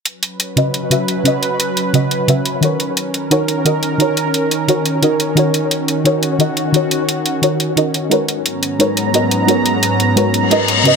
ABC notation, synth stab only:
X:1
M:4/4
L:1/8
Q:1/4=175
K:D#phr
V:1 name="Synth stab"
z3 [C,CFBd]2 [C,CFBe] z [C,CFBd]- | [C,CFBd]3 [C,CFBd]2 [C,CFBe] z [D,DFAc]- | [D,DFAc]3 [D,DFAc]2 [D,DFAd] z [D,DFAc]- | [D,DFAc]3 [D,DFAc]2 [D,DFAd] z [D,DFAc]- |
[D,DFAc]3 [D,DFAc]2 [D,DFAd] z [D,DFAc]- | [D,DFAc]3 [D,DFAc]2 [D,DFAd] z [G,DFABc]- | [G,DFABc]3 [G,DFABc]2 [G,DFABd] z [G,DFABc]- | [G,DFABc]3 [G,DFABc]2 [G,DFABd] z [C,CFBd] |]